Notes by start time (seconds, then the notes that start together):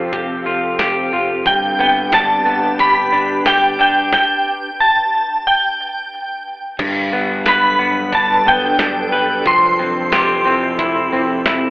Already playing: F3 C4 F4 G4 A4 F5
0.13 F1 G4, kick, closed hi-hat
0.46 F1 F4
0.79 F1 G4, snare, closed hi-hat, tambourine
1.12 F1 F4
1.46 G1 G2 D4 G4 B4 G5, kick, closed hi-hat
1.79 G1 B3 G5
2.12 G1 D4 A5, snare, closed hi-hat, tambourine
2.46 G1 B3
2.79 G1 G4 B5, kick, closed hi-hat
3.12 G1 D4
3.46 G1 G4 G5, snare, closed hi-hat, tambourine
3.79 F1 D4 G5
4.13 G5, kick, snare
4.80 A5
5.47 G5
6.79 G1 G2 F#3 G3 D4 A4 B4, kick, closed hi-hat, crash
7.13 G1 B3
7.46 G1 B4 B5, snare, closed hi-hat, tambourine
7.79 G1 B3
8.12 G1 D4 A5, kick, closed hi-hat
8.46 G1 B3 G5
8.79 G1 D4, snare, closed hi-hat, tambourine
9.12 F#1 B4
9.45 F1 F3 C4 E4 G4 C6, kick, closed hi-hat
9.79 F1 C4
10.12 F1 G4, snare, closed hi-hat, tambourine
10.45 F1 C4
10.79 F1 E4, kick, closed hi-hat
11.12 F1 C4
11.46 F1 E4, snare, closed hi-hat, tambourine